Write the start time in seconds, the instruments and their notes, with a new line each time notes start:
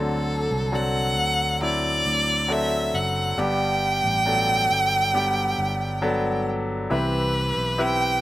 Already playing: fingered electric bass D2, grand piano D3 F#3 C4 D4 A4, violin A4
0.51 fingered electric bass C2
0.72 grand piano F#3 C4 D4 A4, violin F#5
1.17 fingered electric bass D2
1.61 grand piano F#3 C4 D4 E4, violin D5
2.05 fingered electric bass D2
2.48 grand piano F#3 C4 D4 A4, violin E5
2.94 fingered electric bass F#1, violin F#5
3.38 fingered electric bass G1, grand piano G2 G3 B3 D4 G4, violin G5
4.04 fingered electric bass A1
4.26 grand piano F#3 B3 D4 A4
4.70 fingered electric bass G1
5.13 grand piano G3 B3 D4 G4
5.58 fingered electric bass G1
6.02 grand piano F#3 B3 D4 A4
6.90 fingered electric bass C2, grand piano E3 C4 E4 G4 B4 E5, violin B4
7.57 fingered electric bass B1
7.78 grand piano C4 E4 G4 B4 E5, violin G5